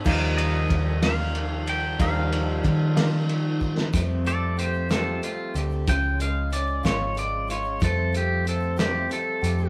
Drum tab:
CC |x-----------|------------|------------|------------|
RD |--x-x-x-x-x-|x-x-x-x-x---|------------|------------|
HH |------------|------------|x-x-x-x-x-x-|x-x-x-x-x-x-|
SD |------o-----|------o----o|------o-----|------o-----|
BD |o---o-------|o---o-----o-|o-----------|o-----o-----|

CC |------------|
RD |------------|
HH |x-x-x-x-x-x-|
SD |------o-----|
BD |o-----------|